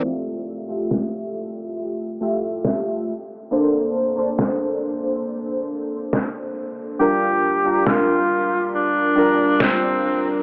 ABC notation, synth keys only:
X:1
M:4/4
L:1/16
Q:1/4=69
K:F
V:1 name="Synth keys"
[A,Ge]3 [A,FGe]6- [A,FGe] [A,FGe]4 z2 | [B,DAc]3 [B,DAc]12- [B,DAc] | [G,DFB]3 [G,DFB]6- [G,DFB] [G,DFB]6 |]